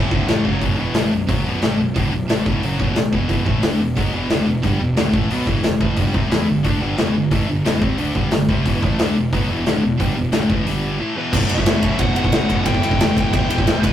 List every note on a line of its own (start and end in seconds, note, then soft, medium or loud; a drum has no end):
0.00 0.10 A1 loud
0.00 0.11 A2 medium
0.00 0.11 E3 medium
0.00 0.12 A3 loud
0.11 0.27 D1 medium
0.11 0.28 D2 medium
0.11 0.27 A2 loud
0.11 0.28 D3 loud
0.11 kick loud
0.28 0.44 A1 medium
0.28 0.44 A2 medium
0.28 0.45 E3 loud
0.28 0.45 A3 loud
0.28 snare loud
0.28 crash medium
0.45 0.61 F#1 medium
0.45 0.61 F#2 medium
0.45 0.62 C#3 loud
0.45 0.62 F#3 loud
0.45 kick medium
0.62 0.77 B0 medium
0.62 0.78 B1 medium
0.62 0.78 F#2 medium
0.62 0.78 B2 loud
0.62 kick medium
0.62 open hi-hat soft
0.77 0.94 E1 medium
0.77 0.95 E2 medium
0.77 0.95 B2 medium
0.77 0.94 E3 loud
0.94 1.10 A1 loud
0.94 1.11 A2 medium
0.94 1.12 E3 medium
0.94 1.12 A3 loud
0.94 snare loud
0.94 open hi-hat medium
1.12 1.28 B0 medium
1.12 1.26 B1 medium
1.12 1.26 F#2 medium
1.28 1.44 F#1 loud
1.28 1.44 F#2 medium
1.28 1.45 C#3 loud
1.28 1.45 F#3 medium
1.28 kick loud
1.28 open hi-hat medium
1.45 1.62 B0 loud
1.45 1.61 B1 medium
1.45 1.62 F#2 medium
1.45 1.62 B2 loud
1.62 1.78 A1 medium
1.62 1.79 A2 loud
1.62 1.79 E3 medium
1.62 1.79 A3 loud
1.62 snare loud
1.62 open hi-hat soft
1.79 1.95 B0 medium
1.79 1.93 B1 medium
1.79 1.93 F#2 medium
1.96 2.12 D1 medium
1.96 2.12 D2 medium
1.96 2.12 A2 medium
1.96 2.13 D3 medium
1.96 kick loud
1.96 open hi-hat medium
2.13 2.29 B0 medium
2.13 2.26 B1 medium
2.13 2.26 F#2 medium
2.29 2.46 A1 loud
2.29 2.46 A2 medium
2.29 2.46 E3 loud
2.29 2.46 A3 loud
2.29 snare loud
2.29 open hi-hat medium
2.46 2.62 E1 medium
2.46 2.63 E2 medium
2.46 2.63 B2 loud
2.46 2.64 E3 medium
2.46 kick loud
2.63 2.79 F#1 medium
2.63 2.79 F#2 loud
2.63 2.80 C#3 medium
2.63 2.80 F#3 medium
2.63 open hi-hat medium
2.80 2.95 B0 medium
2.80 2.96 B1 medium
2.80 2.96 F#2 loud
2.80 2.97 B2 loud
2.80 kick medium
2.96 3.12 B0 medium
2.96 3.10 B1 medium
2.96 3.10 F#2 medium
2.96 snare loud
2.96 open hi-hat medium
3.13 3.29 E1 medium
3.13 3.29 E2 medium
3.13 3.29 B2 loud
3.13 3.30 E3 loud
3.13 kick loud
3.29 3.45 E1 medium
3.29 3.46 E2 medium
3.29 3.46 B2 medium
3.29 3.46 E3 loud
3.29 kick loud
3.29 open hi-hat medium
3.46 3.62 A1 medium
3.46 3.63 A2 medium
3.46 3.62 E3 medium
3.46 3.62 A3 loud
3.46 kick loud
3.63 3.79 D2 medium
3.63 3.79 D3 medium
3.63 3.80 A3 loud
3.63 3.80 D4 loud
3.63 snare loud
3.63 open hi-hat medium
3.80 3.96 E1 medium
3.80 3.94 E2 medium
3.80 3.94 B2 medium
3.96 4.12 B1 medium
3.96 4.12 B2 medium
3.96 4.13 F#3 medium
3.96 4.13 B3 medium
3.96 kick loud
3.96 open hi-hat medium
4.13 4.29 E1 medium
4.13 4.30 E2 medium
4.13 4.30 B2 loud
4.13 4.30 E3 loud
4.30 4.46 D1 medium
4.30 4.46 D2 medium
4.30 4.47 A2 medium
4.30 4.47 D3 loud
4.30 snare loud
4.30 open hi-hat medium
4.47 4.63 E1 medium
4.47 4.60 E2 medium
4.47 4.61 B2 medium
4.63 4.79 G1 medium
4.63 4.79 G2 medium
4.63 4.80 D3 medium
4.63 4.80 G3 loud
4.63 kick medium
4.63 open hi-hat soft
4.80 4.96 E1 medium
4.80 4.94 E2 medium
4.80 4.94 B2 medium
4.97 5.13 D1 medium
4.97 5.13 D2 medium
4.97 5.13 A2 loud
4.97 5.14 D3 loud
4.97 snare loud
4.97 open hi-hat medium
5.13 5.29 A1 medium
5.13 5.30 A2 medium
5.13 5.30 E3 medium
5.13 5.30 A3 medium
5.13 kick loud
5.30 5.46 B1 medium
5.30 5.46 B2 medium
5.30 5.47 F#3 medium
5.30 5.47 B3 loud
5.30 open hi-hat medium
5.47 5.63 E1 medium
5.47 5.63 E2 loud
5.47 5.63 B2 loud
5.47 5.64 E3 loud
5.47 kick loud
5.64 5.80 E1 medium
5.64 5.78 E2 medium
5.64 5.78 B2 medium
5.64 snare loud
5.64 open hi-hat medium
5.81 5.97 A1 medium
5.81 5.96 A2 medium
5.81 5.97 E3 loud
5.81 5.97 A3 loud
5.81 kick loud
5.97 6.13 G1 loud
5.97 6.13 G2 medium
5.97 6.13 D3 medium
5.97 6.13 G3 medium
5.97 kick loud
5.97 open hi-hat medium
6.14 6.30 C2 medium
6.14 6.30 C3 medium
6.14 6.30 G3 medium
6.14 6.30 C4 medium
6.14 kick loud
6.30 6.47 E2 loud
6.30 6.47 E3 medium
6.30 6.47 B3 loud
6.30 6.47 E4 loud
6.30 snare loud
6.30 open hi-hat medium
6.48 6.64 G1 medium
6.48 6.61 G2 medium
6.48 6.61 D3 medium
6.63 6.80 D2 medium
6.63 6.79 D3 medium
6.63 6.80 A3 medium
6.63 6.81 D4 loud
6.63 kick loud
6.63 open hi-hat medium
6.80 6.97 G1 medium
6.80 6.97 G2 medium
6.80 6.97 D3 loud
6.80 6.97 G3 loud
6.97 7.14 E1 medium
6.97 7.14 E2 medium
6.97 7.14 B2 loud
6.97 7.14 E3 medium
6.97 snare loud
6.97 open hi-hat soft
7.14 7.31 G1 medium
7.14 7.28 G2 medium
7.14 7.28 D3 medium
7.31 7.47 A1 medium
7.31 7.47 A2 medium
7.31 7.48 E3 medium
7.31 7.48 A3 loud
7.31 kick loud
7.31 open hi-hat medium
7.47 7.65 G1 medium
7.47 7.61 G2 medium
7.47 7.62 D3 medium
7.64 7.81 E1 loud
7.64 7.81 E2 medium
7.64 7.81 B2 loud
7.64 7.81 E3 loud
7.64 snare loud
7.64 open hi-hat medium
7.81 7.97 C2 loud
7.81 7.98 C3 medium
7.81 7.98 G3 loud
7.81 7.98 C4 loud
7.81 kick loud
7.98 8.15 D2 loud
7.98 8.15 D3 medium
7.98 8.15 A3 medium
7.98 8.15 D4 loud
7.98 open hi-hat medium
8.15 8.31 G1 medium
8.15 8.31 G2 medium
8.15 8.31 D3 loud
8.15 8.32 G3 loud
8.15 kick medium
8.31 8.48 G1 medium
8.31 8.46 G2 medium
8.31 8.46 D3 medium
8.31 snare loud
8.31 open hi-hat medium
8.49 8.64 C2 medium
8.49 8.65 C3 loud
8.49 8.66 G3 medium
8.49 8.66 C4 loud
8.49 kick medium
8.66 8.81 E1 loud
8.66 8.82 E2 loud
8.66 8.82 B2 loud
8.66 8.82 E3 loud
8.66 kick medium
8.66 open hi-hat medium
8.83 8.98 A1 loud
8.83 8.99 A2 medium
8.83 8.99 E3 medium
8.83 8.99 A3 loud
8.83 kick loud
8.99 9.15 D2 loud
8.99 9.16 D3 loud
8.99 9.16 A3 medium
8.99 9.16 D4 loud
8.99 snare loud
8.99 open hi-hat medium
9.16 9.32 E1 medium
9.16 9.30 E2 medium
9.16 9.30 B2 medium
9.32 9.48 B1 loud
9.32 9.49 B2 loud
9.32 9.49 F#3 medium
9.32 9.49 B3 loud
9.32 kick medium
9.32 open hi-hat medium
9.50 9.65 E1 loud
9.50 9.66 E2 medium
9.50 9.66 B2 loud
9.50 9.66 E3 loud
9.66 9.82 D1 loud
9.66 9.82 D2 loud
9.66 9.83 A2 loud
9.66 9.83 D3 medium
9.66 snare loud
9.66 open hi-hat soft
9.83 9.99 E1 medium
9.83 9.96 E2 medium
9.83 9.96 B2 medium
10.00 10.15 G1 medium
10.00 10.16 G2 loud
10.00 10.16 D3 medium
10.00 10.16 G3 loud
10.00 kick loud
10.00 open hi-hat medium
10.17 10.33 E1 medium
10.17 10.30 E2 medium
10.17 10.30 B2 medium
10.32 10.49 D1 medium
10.32 10.49 D2 medium
10.32 10.48 A2 loud
10.32 10.49 D3 loud
10.32 snare loud
10.32 open hi-hat medium
10.49 10.65 A1 loud
10.49 10.66 A2 medium
10.49 10.66 E3 medium
10.49 10.66 A3 medium
10.49 kick loud
10.66 10.99 G1 medium
10.66 10.99 G2 medium
10.66 11.00 D3 medium
10.66 11.00 G3 medium
10.66 open hi-hat medium
11.00 11.16 A2 medium
11.00 11.16 E3 medium
11.00 11.16 A3 medium
11.17 11.33 E2 medium
11.17 11.33 B2 medium
11.17 11.34 E3 loud
11.17 11.34 B4 medium
11.33 11.46 B0 loud
11.33 11.50 B1 medium
11.33 11.50 F#2 loud
11.33 11.49 B2 loud
11.33 11.50 D5 medium
11.33 kick loud
11.33 crash loud
11.41 kick medium
11.49 11.62 B0 medium
11.49 11.66 B1 medium
11.49 11.66 F#2 medium
11.49 11.66 B2 medium
11.49 11.96 E5 medium
11.49 ride medium
11.58 kick loud
11.66 11.79 B0 loud
11.66 11.82 B1 medium
11.66 11.81 F#2 loud
11.66 11.81 B2 medium
11.66 snare loud
11.66 ride loud
11.82 11.96 B0 medium
11.82 11.98 B1 medium
11.82 11.99 F#2 loud
11.82 11.98 B2 loud
11.82 kick medium
11.82 ride medium
11.99 12.25 B0 medium
11.99 12.15 B1 medium
11.99 12.15 F#2 medium
11.99 12.14 B2 medium
11.99 12.15 F#5 loud
11.99 kick loud
11.99 ride loud
12.15 12.32 B1 medium
12.15 12.32 F#2 loud
12.15 12.33 B2 loud
12.15 12.65 F#5 loud
12.15 ride medium
12.24 kick medium
12.32 12.46 B0 medium
12.32 12.49 B1 loud
12.32 12.49 F#2 loud
12.32 12.49 B2 loud
12.32 snare loud
12.32 ride loud
12.49 12.63 B0 medium
12.49 12.66 B1 medium
12.49 12.66 F#2 medium
12.49 12.65 B2 loud
12.49 kick medium
12.49 ride medium
12.66 12.79 E1 loud
12.66 12.83 E2 medium
12.66 12.83 B2 medium
12.66 12.82 E3 loud
12.66 13.87 G5 loud
12.66 kick loud
12.66 ride loud
12.74 kick medium
12.83 12.97 E1 loud
12.83 12.98 E2 medium
12.83 12.99 B2 medium
12.83 12.99 E3 medium
12.83 ride medium
12.91 kick medium
13.00 13.13 E1 loud
13.00 13.15 E2 medium
13.00 13.15 B2 medium
13.00 13.15 E3 medium
13.00 snare loud
13.00 ride loud
13.16 13.29 E1 medium
13.16 13.31 E2 medium
13.16 13.32 B2 medium
13.16 13.32 E3 loud
13.16 kick medium
13.16 ride medium
13.32 13.47 E1 loud
13.32 13.49 E2 medium
13.32 13.49 B2 medium
13.32 13.48 E3 loud
13.32 kick loud
13.32 ride loud
13.49 13.63 E1 medium
13.49 13.66 E2 medium
13.49 13.66 B2 loud
13.49 13.66 E3 loud
13.49 ride medium
13.58 kick loud
13.67 13.80 E1 medium
13.67 13.83 E2 loud
13.67 13.82 B2 loud
13.67 13.82 E3 loud
13.67 snare loud
13.67 ride loud
13.83 13.93 E1 medium
13.83 13.93 E2 medium
13.83 13.93 B2 loud
13.83 13.93 E3 loud
13.83 13.93 B4 loud
13.83 kick loud
13.83 ride medium